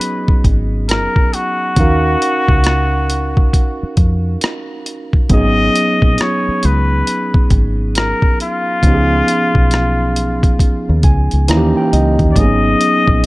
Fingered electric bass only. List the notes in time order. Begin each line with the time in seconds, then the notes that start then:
0.29 muted fingered electric bass stroke
0.45 G#1
1.77 D#2
2.49 C#2
3.83 muted fingered electric bass stroke
3.98 F2
5.31 G#1
6.03 A#1
6.48 muted fingered electric bass stroke
6.65 C#2
7.35 muted fingered electric bass stroke
7.51 G#1
8.84 C#2
9.55 B1
10.89 D#2
11.04 C#2
11.33 C#2
11.49 D#2
11.93 C#2
12.20 D#2
12.36 G#1
13.08 A#1